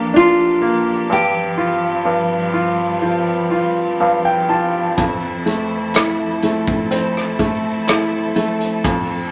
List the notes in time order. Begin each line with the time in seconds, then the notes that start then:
Already playing: G2 F3 A#3 D4 G4
0.14 D4 F4
0.62 A#3
1.10 G2 G3 C4 G4
1.57 F4
2.05 G2
2.54 F4
3.02 F3
3.51 F4
4.00 G2 F5
4.25 G5
4.49 F4 A5
4.97 F2 E4 A4, kick, closed hi-hat
5.46 A3, closed hi-hat
5.94 E4, cross-stick, closed hi-hat
6.43 A3, closed hi-hat
6.67 kick
6.91 C4 E4, closed hi-hat
7.17 cross-stick
7.39 A3, kick, closed hi-hat
7.88 E4, cross-stick, closed hi-hat
8.36 A3, closed hi-hat
8.61 closed hi-hat
8.83 F2 C4 D4, kick, closed hi-hat